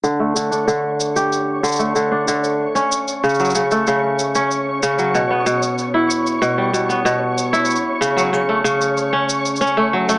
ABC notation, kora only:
X:1
M:4/4
L:1/16
Q:1/4=94
K:Glyd
V:1 name="Kora" clef=bass
D, A, D, D D,3 G3 D, A, D, D D,2 | z C3 C, F, C, A, C,3 C3 C, F, | B,, B, B,,3 E3 B,, G, B,, B, B,,3 E | z2 C, F, C, A, C,3 C z2 C A, F, A, |]